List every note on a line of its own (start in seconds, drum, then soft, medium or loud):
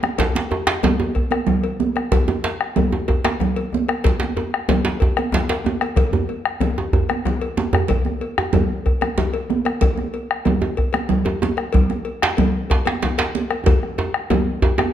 0.03 bombo rim medium
0.03 djembe slap medium
0.03 high conga medium
0.18 bombo rim soft
0.18 bombo low medium
0.18 cowbell medium
0.18 djembe slap medium
0.18 djembe bass medium
0.18 low conga medium
0.35 bombo rim soft
0.35 djembe slap medium
0.35 djembe tone medium
0.35 high conga medium
0.51 cowbell soft
0.51 djembe tone medium
0.67 bombo rim medium
0.67 djembe slap loud
0.67 djembe slap soft
0.83 cowbell soft
0.83 djembe slap medium
0.83 djembe tone medium
0.83 high conga medium
0.83 djembe bass medium
0.83 low conga medium
1.00 djembe tone medium
1.15 bombo rim soft
1.15 bombo low medium
1.15 cowbell soft
1.15 high conga soft
1.31 bombo rim medium
1.31 cowbell soft
1.31 djembe slap soft
1.31 high conga medium
1.31 djembe tone medium
1.47 djembe slap medium
1.47 low conga medium
1.47 djembe bass medium
1.64 cowbell soft
1.64 high conga soft
1.80 djembe tone medium
1.80 high conga medium
1.96 bombo rim medium
1.96 cowbell soft
1.96 high conga soft
2.12 bombo rim soft
2.12 bombo low medium
2.12 cowbell medium
2.12 djembe slap medium
2.12 djembe tone medium
2.12 low conga medium
2.12 djembe bass medium
2.28 bombo rim soft
2.28 djembe tone medium
2.28 high conga medium
2.44 cowbell soft
2.44 djembe slap medium
2.60 bombo rim medium
2.60 djembe slap soft
2.76 cowbell soft
2.76 djembe slap medium
2.76 high conga medium
2.76 djembe tone medium
2.76 low conga medium
2.76 djembe bass medium
2.92 djembe tone medium
3.08 bombo rim soft
3.08 bombo low medium
3.08 cowbell soft
3.08 djembe tone medium
3.08 high conga soft
3.24 bombo rim medium
3.24 cowbell medium
3.24 djembe slap medium
3.24 djembe slap soft
3.24 djembe tone medium
3.24 high conga medium
3.40 djembe slap medium
3.40 djembe bass medium
3.40 low conga medium
3.56 cowbell soft
3.56 high conga soft
3.73 djembe tone medium
3.73 high conga medium
3.89 bombo rim medium
3.89 cowbell medium
3.89 high conga soft
4.04 bombo rim soft
4.04 bombo low medium
4.04 cowbell medium
4.04 djembe slap medium
4.04 djembe bass medium
4.04 low conga medium
4.20 djembe slap medium
4.20 djembe tone medium
4.20 high conga medium
4.37 cowbell soft
4.37 djembe tone medium
4.52 bombo rim medium
4.52 djembe slap soft
4.69 cowbell soft
4.69 djembe slap medium
4.69 djembe tone medium
4.69 high conga medium
4.69 djembe bass medium
4.69 low conga medium
4.85 djembe slap medium
5.00 bombo rim soft
5.00 bombo low medium
5.00 cowbell soft
5.00 djembe tone medium
5.00 high conga soft
5.16 bombo rim medium
5.16 cowbell soft
5.16 djembe slap soft
5.16 djembe tone medium
5.16 high conga soft
5.32 djembe slap medium
5.32 djembe bass medium
5.32 low conga medium
5.34 djembe slap medium
5.49 cowbell medium
5.49 djembe slap medium
5.49 high conga soft
5.64 djembe tone medium
5.64 high conga medium
5.66 djembe tone medium
5.81 bombo rim medium
5.81 cowbell soft
5.81 high conga soft
5.96 bombo low loud
5.96 cowbell medium
5.96 djembe slap medium
5.96 djembe bass medium
5.96 low conga medium
6.12 djembe tone medium
6.12 high conga medium
6.12 djembe bass medium
6.29 cowbell soft
6.29 high conga soft
6.45 bombo rim medium
6.60 cowbell soft
6.60 djembe slap medium
6.60 djembe tone medium
6.60 high conga medium
6.60 djembe bass medium
6.60 low conga medium
6.78 bombo rim soft
6.78 djembe tone medium
6.93 bombo low medium
6.93 cowbell soft
6.93 high conga soft
6.93 djembe bass loud
7.09 bombo rim medium
7.09 cowbell soft
7.09 djembe tone medium
7.09 high conga medium
7.25 djembe slap medium
7.25 djembe bass medium
7.25 low conga medium
7.41 cowbell soft
7.57 djembe slap soft
7.57 djembe tone medium
7.57 high conga medium
7.73 bombo rim medium
7.73 cowbell soft
7.73 djembe bass loud
7.88 bombo rim soft
7.88 bombo low loud
7.88 cowbell medium
7.88 djembe slap medium
7.88 low conga medium
7.88 djembe bass medium
8.05 bombo rim soft
8.05 high conga medium
8.05 djembe tone medium
8.21 cowbell soft
8.38 bombo rim medium
8.38 djembe tone medium
8.53 cowbell soft
8.53 djembe slap medium
8.53 high conga medium
8.53 djembe tone medium
8.53 low conga medium
8.53 djembe bass medium
8.86 bombo rim soft
8.86 bombo low medium
8.86 cowbell soft
8.86 high conga soft
9.01 bombo rim medium
9.01 cowbell soft
9.01 djembe slap soft
9.01 high conga medium
9.01 djembe tone medium
9.18 djembe slap medium
9.18 djembe tone medium
9.18 low conga medium
9.18 djembe bass medium
9.34 cowbell medium
9.34 high conga soft
9.50 djembe tone medium
9.50 high conga medium
9.65 bombo rim medium
9.65 cowbell soft
9.65 high conga soft
9.81 bombo rim soft
9.81 bombo low medium
9.81 cowbell medium
9.81 djembe slap medium
9.81 low conga medium
9.81 djembe bass medium
9.97 bombo rim soft
9.97 high conga medium
9.97 djembe tone medium
10.14 cowbell soft
10.30 bombo rim medium
10.30 djembe slap soft
10.45 cowbell soft
10.45 high conga medium
10.45 djembe tone medium
10.45 low conga medium
10.45 djembe bass medium
10.62 djembe tone medium
10.77 bombo rim soft
10.77 bombo low medium
10.77 cowbell soft
10.77 high conga soft
10.93 bombo rim medium
10.93 cowbell soft
10.93 djembe slap soft
10.93 djembe tone medium
10.93 high conga medium
11.09 djembe slap medium
11.09 low conga medium
11.09 djembe bass medium
11.25 cowbell soft
11.25 djembe tone medium
11.25 high conga soft
11.42 djembe tone medium
11.42 high conga medium
11.57 bombo rim medium
11.57 cowbell soft
11.57 high conga soft
11.73 bombo rim soft
11.73 bombo low medium
11.73 cowbell medium
11.73 djembe slap medium
11.73 low conga medium
11.73 djembe bass medium
11.90 bombo rim soft
11.90 high conga medium
11.90 djembe tone medium
12.05 cowbell soft
12.22 bombo rim medium
12.22 djembe slap loud
12.37 cowbell soft
12.37 djembe slap medium
12.37 high conga medium
12.37 djembe tone medium
12.37 low conga medium
12.37 djembe bass medium
12.70 bombo rim soft
12.70 bombo low medium
12.70 cowbell soft
12.70 djembe slap medium
12.70 high conga soft
12.85 bombo rim medium
12.85 cowbell soft
12.85 djembe slap soft
12.85 djembe slap medium
12.85 high conga medium
12.85 djembe tone soft
13.02 djembe slap medium
13.02 low conga medium
13.02 djembe bass medium
13.18 cowbell soft
13.18 djembe slap medium
13.18 high conga soft
13.35 djembe tone medium
13.35 high conga medium
13.50 bombo rim medium
13.50 cowbell soft
13.50 high conga soft
13.66 bombo rim soft
13.66 bombo low loud
13.66 cowbell medium
13.66 djembe slap medium
13.66 djembe tone medium
13.66 high conga soft
13.66 low conga medium
13.66 djembe bass medium
13.83 bombo rim soft
13.83 djembe tone medium
13.98 cowbell soft
13.98 djembe tone loud
14.14 bombo rim medium
14.30 cowbell medium
14.30 djembe slap medium
14.30 djembe tone loud
14.30 djembe tone medium
14.30 high conga medium
14.30 djembe bass medium
14.30 low conga medium
14.47 djembe slap soft
14.62 bombo low medium
14.62 cowbell soft
14.62 djembe tone loud
14.78 bombo rim medium
14.78 cowbell soft
14.78 djembe tone loud
14.78 djembe tone medium
14.78 high conga soft